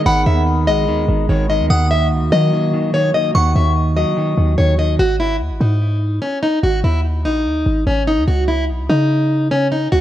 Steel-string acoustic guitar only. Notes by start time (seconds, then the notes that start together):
0.06 F#5
0.26 E5
0.67 D#5
1.29 C#5
1.50 D#5
1.70 F#5
1.91 E5
2.32 D#5
2.94 C#5
3.14 D#5
3.35 F#5
3.56 E5
3.96 D#5
4.58 C#5
4.79 D#5
4.99 F#4
5.20 E4
5.61 D#4
6.22 C#4
6.43 D#4
6.63 F#4
6.84 E4
7.25 D#4
7.87 C#4
8.08 D#4
8.28 F#4
8.48 E4
8.89 D#4
9.51 C#4
9.72 D#4
9.92 F#4